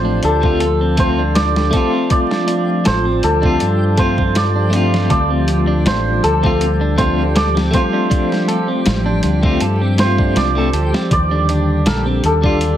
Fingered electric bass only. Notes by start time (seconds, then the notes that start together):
Already playing: A1
0.23 D2
2.87 A1
3.23 D2
3.61 G2
5.11 D2
5.86 A1
6.23 D2
8.87 A1
9.24 D2
9.61 G2
10.36 C2
10.73 D2
11.11 D#2
11.86 A#1
12.24 D#2